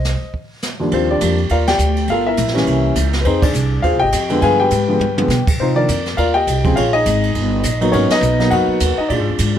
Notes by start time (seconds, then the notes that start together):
Already playing: C2 C5 D#5
0.04 snare, hi-hat pedal
0.21 muted upright bass stroke
0.34 brush sweep, kick
0.62 snare, hi-hat pedal
0.80 D#2 F3 G3 A#3 D4
0.91 D#2 C4 F4 G4 C5, kick, ride
1.11 D4 G4 D5
1.21 F2 F3 G3 A#3 D4, kick, hi-hat pedal, ride
1.38 ride
1.49 D#2 F4 A#4 D5 F5, kick, ride
1.67 G4 D5 G5, snare, ride
1.78 D2, hi-hat pedal
1.96 ride
2.08 G1 F4 A4 A#4 F5, kick, ride
2.26 E4 A#4 E5
2.37 A#1, kick, hi-hat pedal, ride
2.48 snare
2.54 E3 G3 A#3 C#4, snare, ride
2.66 C2, kick, ride
2.95 C#2, kick, hi-hat pedal, ride
3.13 snare, ride
3.21 B4 C5, kick, ride
3.25 F2 C4 D#4 G#4
3.42 D4 G#4 D5, kick, crash
3.53 C2, hi-hat pedal
3.82 D#2 F4 G#4 C5 F5, kick, ride
3.93 C2
4.00 G#1 G4 D#5 G5
4.12 F2, kick, hi-hat pedal, ride
4.29 D3 F3 G#3 B3, ride
4.41 G2 G#4 B4 F5 G#5, kick, ride
4.60 G4 B4 G5
4.70 G#2, kick, hi-hat pedal, ride
4.88 D3 F3 G#3 B3
4.99 G2, high tom
5.17 D3 F3 G#3 B3, high tom
5.28 B2, snare, hi-hat pedal
5.47 muted upright bass stroke, kick, crash
5.59 C3 C4 D#4 F4 C5, kick
5.75 D#3 F3 A#3 D4 A#4 D5
5.88 F2, kick, hi-hat pedal, ride
6.06 snare, ride
6.17 D#2 F4 A#4 D5 F5, kick, ride
6.34 G4 D#5 G5
6.47 C2, kick, hi-hat pedal, ride
6.64 C#3 F3 G#3 C4, kick, ride
6.76 A#1 F4 G#4 C#5 F5, ride
6.93 D#4 G#4 D#5
7.06 G#1, kick, hi-hat pedal, ride
7.23 ride
7.35 G1, kick, ride
7.63 A#1, kick, hi-hat pedal, ride
7.81 F#3 A#3 B3 D#4, ride
7.92 G#1 C#4 F#4 A#4 C#5, kick, ride
8.09 D#5, muted upright bass stroke, snare, ride
8.13 D#4 B4
8.21 B1, hi-hat pedal
8.39 F#3 A#3 B3 D#4, snare, ride
8.51 F#2 F#4 A#4 B4 F#5, kick, ride
8.67 muted upright bass stroke
8.80 D#2, kick, hi-hat pedal, ride
8.98 D#4 D#5, muted upright bass stroke
9.09 A#2 D4 F4 G#4 D5, kick, ride
9.19 G#2
9.29 F2
9.38 G#2, kick, hi-hat pedal, ride